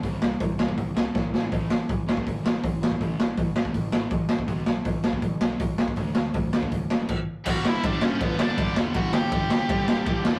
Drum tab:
CC |----------------|----------------|----------------|----------------|
RD |----------------|----------------|----------------|----------------|
HH |o---o---o-------|o---o---o---o---|o---o---o---o---|o---o---o---o---|
SD |--o---o---o-o-o-|--o---o---o---o-|--o---o---o---o-|--o---o---o---o-|
BD |o---o--oo---o---|o---o--oo---o--o|o---o--oo---o--o|o---o--oo---o--o|

CC |------------x---|x---------------|----------------|
RD |----------------|----x---x---x---|x---x---x---x---|
HH |o---o---o-------|----------------|----------------|
SD |--o---o---o-----|--o---o---o---o-|--o---o---o---o-|
BD |o---o--oo---o---|o---o---o---o---|o---o---o---o---|